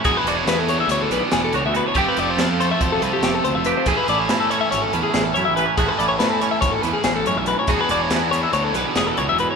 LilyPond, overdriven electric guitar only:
\new Staff \with { instrumentName = "Overdriven electric guitar" } { \time 9/8 \key a \major \tempo 4. = 94 <e b d' gis'>1~ <e b d' gis'>8 | <f a c' f'>1~ <f a c' f'>8 | <a, e a cis' e'>1~ <a, e a cis' e'>8 | <a, e a cis' e'>1~ <a, e a cis' e'>8 |
<e b d' gis'>1~ <e b d' gis'>8 | }